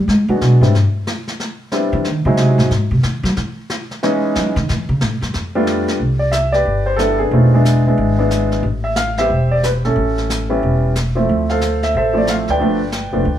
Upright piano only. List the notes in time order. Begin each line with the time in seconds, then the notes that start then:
0.29 F#3 G#3 B3 D4 F#4
0.62 G3 B3 C4 D4 E4
1.72 G3 B3 C4 D4 E4
2.26 F#3 G#3 C4 D#4 E4
4.03 E3 G#3 B3 C#4 D#4
5.55 G3 A3 B3 D4 F4
6.19 D5
6.32 E5
6.52 G4 B4 D5
6.86 C5
6.96 G3 B3 D4 E4 A4
7.18 B3 D4 G#4
7.33 A3 C4 D#4 F4
7.54 G#3 B3 D4 E4
7.87 G#3 B3 D4 E4
8.18 G#3 B3 D4 E4
8.84 E5
8.96 F5
9.18 G3 B3 C4 E4 G4 C5 E5
9.51 D5
9.64 B4
9.85 C#4 E4 A4
10.49 G3 B3 C#4 E4
11.15 F3 A3 C4 E4
11.50 A4 C5 F5
11.83 E5
11.97 A4 C5 E5
12.13 F3 A3 C4 E4
12.18 D5
12.30 F5
12.50 B4 D5 G5
12.60 F3 A3 B3 D4
13.13 F3 A3 B3 D4